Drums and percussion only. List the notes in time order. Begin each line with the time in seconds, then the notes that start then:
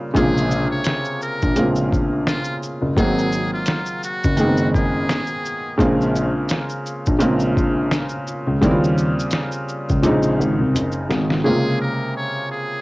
0.15 kick, closed hi-hat, shaker
0.37 shaker
0.51 shaker
0.84 finger snap, snare, closed hi-hat, shaker
1.04 shaker
1.21 shaker
1.42 kick, shaker
1.56 closed hi-hat, shaker
1.75 shaker
1.92 kick, shaker
2.27 finger snap, snare, closed hi-hat, shaker
2.44 shaker
2.63 shaker
2.96 kick, closed hi-hat, shaker
3.18 shaker
3.32 shaker
3.66 finger snap, snare, closed hi-hat, shaker
3.86 shaker
4.03 shaker
4.24 kick, shaker
4.37 closed hi-hat, shaker
4.57 shaker
4.75 kick, shaker
5.09 finger snap, snare, closed hi-hat, shaker
5.26 shaker
5.45 shaker
5.79 kick, closed hi-hat, shaker
6.01 shaker
6.16 shaker
6.49 finger snap, snare, closed hi-hat, shaker
6.69 shaker
6.86 shaker
7.06 kick, shaker
7.20 closed hi-hat, shaker
7.40 shaker
7.57 kick, shaker
7.91 finger snap, snare, closed hi-hat, shaker
8.09 shaker
8.27 shaker
8.62 kick, closed hi-hat, shaker
8.84 shaker
8.98 shaker
9.19 shaker
9.31 finger snap, snare, closed hi-hat, shaker
9.52 shaker
9.69 shaker
9.89 kick, shaker
10.03 closed hi-hat, shaker
10.23 shaker
10.41 shaker
10.76 closed hi-hat, shaker
10.92 shaker
11.10 snare, shaker
11.30 snare